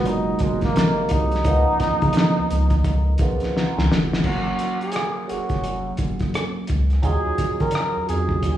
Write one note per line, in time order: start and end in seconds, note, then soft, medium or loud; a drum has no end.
0.00 0.35 F#1 medium
0.00 0.40 B2 loud
0.00 0.41 F#3 loud
0.00 0.42 G#3 loud
0.00 0.42 A#3 loud
0.00 0.43 D#4 loud
0.00 0.77 F4 medium
0.00 0.38 F#4 medium
0.00 0.34 A#4 medium
0.05 0.44 D#4 loud
0.05 closed hi-hat medium
0.39 0.71 F#1 medium
0.39 0.75 B2 medium
0.39 0.74 F#3 medium
0.39 0.75 G#3 medium
0.39 0.63 G#3 medium
0.39 0.76 A#3 medium
0.39 kick medium
0.39 closed hi-hat medium
0.43 0.77 D#4 medium
0.61 1.14 A#3 loud
0.61 kick loud
0.61 snare soft
0.61 closed hi-hat soft
0.74 1.07 G#1 medium
0.74 1.38 C3 medium
0.74 1.38 F#3 medium
0.74 1.39 G#3 medium
0.74 1.39 A#3 medium
0.74 1.40 D#4 medium
0.74 snare loud
0.74 closed hi-hat medium
1.09 1.42 C2 loud
1.09 3.56 D#4 loud
1.09 kick loud
1.09 closed hi-hat medium
1.32 snare soft
1.32 closed hi-hat soft
1.44 1.65 C#2 loud
1.44 2.70 C#3 loud
1.44 2.70 F3 medium
1.44 2.71 A#3 medium
1.44 2.71 B3 medium
1.44 2.72 D#4 loud
1.44 kick loud
1.44 closed hi-hat medium
1.80 1.89 C#3 medium
1.80 kick medium
1.80 snare soft
1.80 closed hi-hat medium
2.02 2.14 C#3 loud
2.02 kick loud
2.02 closed hi-hat soft
2.13 closed hi-hat medium
2.17 snare loud
2.38 2.43 C#2 soft
2.50 2.81 C#2 loud
2.50 closed hi-hat medium
2.70 kick medium
2.70 closed hi-hat soft
2.84 3.16 C#2 medium
2.84 kick loud
2.84 closed hi-hat medium
3.18 3.39 B1 medium
3.18 4.14 C#3 medium
3.18 4.14 F3 medium
3.18 4.14 A#3 medium
3.18 4.15 B3 medium
3.18 kick loud
3.18 closed hi-hat medium
3.23 4.15 F4 medium
3.40 snare soft
3.40 closed hi-hat soft
3.56 3.75 A#5 medium
3.56 snare medium
3.77 3.89 C#2 medium
3.77 3.89 G#5 medium
3.77 snare medium
3.90 4.21 F1 loud
3.90 4.22 F#5 medium
3.90 snare loud
4.13 snare medium
4.21 4.55 F#1 loud
4.21 5.18 F#3 medium
4.21 5.19 A#3 medium
4.21 4.28 G#4 medium
4.21 kick medium
4.21 crash medium
4.25 5.19 C#4 medium
4.25 4.82 F#4 medium
4.25 5.20 A#4 loud
4.25 5.19 F5 medium
4.59 closed hi-hat medium
4.81 5.31 G#4 loud
4.81 closed hi-hat soft
4.92 closed hi-hat medium
4.96 cross-stick medium
5.28 5.39 F1 soft
5.28 6.53 F#3 medium
5.28 6.54 A#3 medium
5.28 6.54 C#4 medium
5.28 5.99 F#4 medium
5.28 6.55 G#4 medium
5.28 6.55 F5 medium
5.28 closed hi-hat medium
5.49 5.93 F1 medium
5.49 kick medium
5.49 closed hi-hat soft
5.55 cross-stick soft
5.64 closed hi-hat medium
5.97 6.30 F1 medium
5.97 kick medium
5.97 closed hi-hat medium
6.19 kick medium
6.19 cross-stick soft
6.19 closed hi-hat soft
6.34 cross-stick loud
6.34 closed hi-hat medium
6.67 7.00 C#2 medium
6.67 kick medium
6.67 closed hi-hat medium
6.90 cross-stick soft
6.90 closed hi-hat soft
7.02 7.23 D#2 loud
7.02 7.97 F#3 medium
7.02 7.98 C#4 medium
7.02 7.98 D#4 medium
7.02 7.98 F4 medium
7.02 7.13 G4 medium
7.02 7.63 G#4 loud
7.02 kick loud
7.02 closed hi-hat medium
7.12 8.02 G#4 loud
7.38 7.48 D#3 soft
7.38 kick medium
7.38 cross-stick soft
7.38 closed hi-hat medium
7.60 7.72 D#3 medium
7.60 8.09 A#4 medium
7.60 kick medium
7.60 closed hi-hat soft
7.71 closed hi-hat medium
7.75 cross-stick loud
7.96 8.01 F2 soft
8.07 8.39 F2 medium
8.07 8.57 C#4 medium
8.07 8.57 D#4 medium
8.07 8.57 F4 medium
8.07 8.57 F#4 medium
8.07 8.57 G#4 medium
8.07 closed hi-hat medium
8.29 kick medium
8.43 8.57 D#2 medium
8.43 kick medium
8.43 closed hi-hat medium